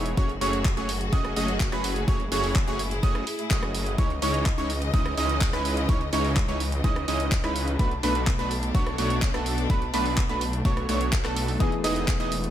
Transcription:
Already playing: E1 G#3 B3 D#4 E4 G#4 C#5 C#6
0.06 closed hi-hat
0.17 F#1 A2 A3 C#4 F#4 G#4 C#5 C#6, kick, closed hi-hat
0.29 closed hi-hat
0.41 F#1 A3 C#4 F#4 G#4 C#5 C#6, open hi-hat
0.53 closed hi-hat
0.65 kick, clap, closed hi-hat
0.77 F#1 A3 C#4 F#4 G#4 C#5 C#6, closed hi-hat
0.89 open hi-hat
1.01 closed hi-hat
1.13 F#1 A3 C#4 F#4 G#4 D#5 D#6, kick, closed hi-hat
1.25 cross-stick, closed hi-hat
1.36 F#1 A3 C#4 F#4 G#4 D#5 D#6, open hi-hat
1.48 closed hi-hat
1.60 kick, clap, closed hi-hat
1.72 F#1 A3 C#4 F#4 G#4 B4 B5, cross-stick, closed hi-hat
1.84 open hi-hat
1.96 closed hi-hat
2.08 F#1 A3 C#4 E4 F#4 G#4 C#5 C#6, kick, closed hi-hat
2.20 closed hi-hat
2.32 F#1 A3 C#4 F#4 G#4 C#5 C#6, open hi-hat
2.44 open hi-hat
2.55 kick, clap, closed hi-hat
2.67 F#1 A3 C#4 F#4 G#4 C#5 C#6, closed hi-hat
2.79 open hi-hat
2.91 closed hi-hat
3.03 F#1 A3 C#4 F#4 G#4 D#5 D#6, kick, closed hi-hat
3.15 cross-stick, closed hi-hat
3.27 open hi-hat
3.39 closed hi-hat
3.51 F#1 A3 C#4 F#4 G#4 D#5 D#6, kick, clap, closed hi-hat
3.63 cross-stick, closed hi-hat
3.75 open hi-hat
3.86 closed hi-hat
3.98 C#2 C#3 E3 G#3 C#4 D#4 E4 C#5 D#5 C#6, kick, closed hi-hat
4.10 closed hi-hat
4.22 C#2 G#3 C#4 D#4 E4 C#5 C#6, open hi-hat
4.34 closed hi-hat
4.46 kick, clap, closed hi-hat
4.58 C#2 G#3 C#4 D#4 E4 C#5 C#6, closed hi-hat
4.70 open hi-hat
4.82 closed hi-hat
4.94 C#2 G#3 C#4 D#4 E4 D#5 D#6, kick, closed hi-hat
5.06 cross-stick, closed hi-hat
5.17 C#2 G#3 C#4 D#4 E4 D#5 D#6, open hi-hat
5.29 closed hi-hat
5.41 kick, clap, closed hi-hat
5.53 C#2 G#3 C#4 D#4 E4 B4 B5, cross-stick, closed hi-hat
5.65 open hi-hat
5.77 closed hi-hat
5.89 C#2 G#3 C#4 D#4 E4 C#5 C#6, kick, closed hi-hat
6.01 closed hi-hat
6.13 C#2 G#3 C#4 D#4 E4 C#5 C#6, open hi-hat
6.25 open hi-hat
6.36 kick, clap, closed hi-hat
6.48 C#2 G#3 C#4 D#4 E4 C#5 C#6, closed hi-hat
6.60 open hi-hat
6.72 closed hi-hat
6.84 C#2 G#3 C#4 D#4 E4 D#5 D#6, kick, closed hi-hat
6.96 cross-stick, closed hi-hat
7.08 C#2 G#3 C#4 D#4 E4 D#5 D#6, open hi-hat
7.20 closed hi-hat
7.32 kick, clap, closed hi-hat
7.44 C#2 G#3 C#4 D#4 E4 B4 B5, cross-stick, closed hi-hat
7.56 open hi-hat
7.68 closed hi-hat
7.79 B1 B2 A3 B3 D4 F#4 B4 B5, kick, closed hi-hat
7.91 closed hi-hat
8.03 B1 A3 B3 D4 F#4 B4 B5, open hi-hat
8.15 closed hi-hat
8.27 kick, clap, closed hi-hat
8.39 B1 A3 B3 D4 F#4 B4 B5, closed hi-hat
8.51 open hi-hat
8.63 closed hi-hat
8.75 B1 A3 B3 D4 F#4 C#5 C#6, kick, closed hi-hat
8.87 cross-stick, closed hi-hat
8.98 B1 A3 B3 D4 F#4 C#5 C#6, open hi-hat
9.10 closed hi-hat
9.22 kick, clap, closed hi-hat
9.34 B1 A3 B3 D4 F#4 A4 A5, cross-stick, closed hi-hat
9.46 open hi-hat
9.58 closed hi-hat
9.70 B1 A3 B3 D4 F#4 B4 B5, kick, closed hi-hat
9.82 closed hi-hat
9.94 B1 A3 B3 D4 F#4 B4 B5, open hi-hat
10.06 open hi-hat
10.17 kick, clap, closed hi-hat
10.29 B1 A3 B3 D4 F#4 B4 B5, closed hi-hat
10.41 open hi-hat
10.53 closed hi-hat
10.65 B1 A3 B3 D4 F#4 C#5 C#6, kick, closed hi-hat
10.77 cross-stick, closed hi-hat
10.89 B1 A3 B3 D4 F#4 C#5 C#6, open hi-hat
11.01 closed hi-hat
11.13 kick, clap, closed hi-hat
11.25 B1 A3 B3 D4 F#4 A4 A5, cross-stick, clap, closed hi-hat
11.36 open hi-hat
11.48 open hi-hat
11.59 E1 E3 B3 D#4 E4 G#4 D#5 D#6, kick, closed hi-hat
11.72 closed hi-hat
11.84 E1 B3 D#4 E4 G#4 D#5 D#6, open hi-hat, ride
11.96 closed hi-hat
12.08 kick, clap, closed hi-hat
12.20 E1 B3 D#4 E4 G#4 D#5 D#6, closed hi-hat
12.32 open hi-hat, ride
12.44 closed hi-hat

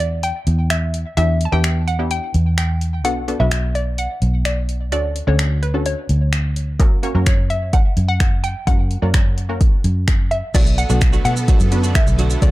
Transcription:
Already playing: E2 B3 D4 E4 G4
0.00 D5, closed hi-hat
0.23 G5, closed hi-hat
0.47 E2, closed hi-hat
0.70 E5, finger snap, closed hi-hat
0.94 closed hi-hat
1.17 E2 B3 D4 E4 G4 E5, closed hi-hat
1.41 closed hi-hat
1.45 A5
1.52 E2 B3 D4 E4 G4 G5
1.64 finger snap, closed hi-hat
1.88 F#5, closed hi-hat
1.99 B3 D4 E4 G4
2.11 G5, closed hi-hat
2.34 E2, closed hi-hat
2.58 G5, finger snap, closed hi-hat
2.81 closed hi-hat
3.04 B1 B3 D4 F#4 A4 F#5, closed hi-hat
3.28 B3 D4 F#4 A4, closed hi-hat
3.39 B1 B3 D4 F#4 B4 E5
3.51 finger snap, closed hi-hat
3.75 D5, closed hi-hat
3.98 F#5, closed hi-hat
4.22 B1, closed hi-hat
4.45 D5, finger snap, closed hi-hat
4.69 closed hi-hat
4.92 D2 C#4 D4 F#4 A4 D5, closed hi-hat
5.16 closed hi-hat
5.27 D2 C#4 D4 F#4 A4 C#5
5.39 finger snap, closed hi-hat
5.63 B4, closed hi-hat
5.74 C#4 D4 F#4 A4
5.86 C#5, closed hi-hat
6.09 D2, closed hi-hat
6.33 finger snap, closed hi-hat
6.56 closed hi-hat
6.79 F#2 A#3 C#4 F#4 A#4, kick, closed hi-hat
7.03 A#3 C#4 F#4 C#5, closed hi-hat
7.15 F#2 A#3 C#4 F#4 A#4
7.26 C#5, finger snap, kick, closed hi-hat
7.50 E5, closed hi-hat
7.73 F#5, kick, closed hi-hat
7.97 F#2, closed hi-hat
8.08 F#5
8.20 finger snap, kick, closed hi-hat
8.44 G5, closed hi-hat
8.67 F#2 A#3 C#4 F#4 A#4 F#5, kick, closed hi-hat
8.91 closed hi-hat
9.02 F#2 A#3 C#4 F#4 A#4 D5
9.14 C#5, finger snap, kick, closed hi-hat
9.38 closed hi-hat
9.49 A#3 C#4 F#4 A#4
9.61 kick, closed hi-hat
9.84 F#2, closed hi-hat
10.08 finger snap, kick, closed hi-hat
10.31 E5, closed hi-hat
10.54 B1 D3 F#3 A3 B3 D4 F#4 A4 D5, kick, closed hi-hat, crash, shaker
10.66 muted clean electric guitar stroke, shaker
10.78 F#5, muted clean electric guitar stroke, closed hi-hat, shaker
10.89 B1 F#3 A3 B3 D4 F#4 A4, shaker
11.01 finger snap, kick, closed hi-hat, shaker
11.13 F#3 A3 D4 F#4, shaker
11.25 B2 F#3 A3 D4 F#4 F#5, closed hi-hat, shaker
11.36 muted clean electric guitar stroke, shaker
11.48 F#3 A3 D4 F#4, kick, closed hi-hat, shaker
11.60 F#2, muted clean electric guitar stroke, shaker
11.72 B3 D4 F#4 B4, muted clean electric guitar stroke, closed hi-hat, shaker
11.83 F#3 A3 D4 F#4, shaker
11.95 E5, finger snap, muted clean electric guitar stroke, kick, closed hi-hat, shaker
12.07 B1, muted clean electric guitar stroke, shaker
12.18 F#3 A3 D4 F#4, closed hi-hat, shaker
12.30 F#3 A3 D4 F#4, shaker
12.42 D2 F#3 A3 C#4 D4 F#4 A4 D5, kick, closed hi-hat, shaker

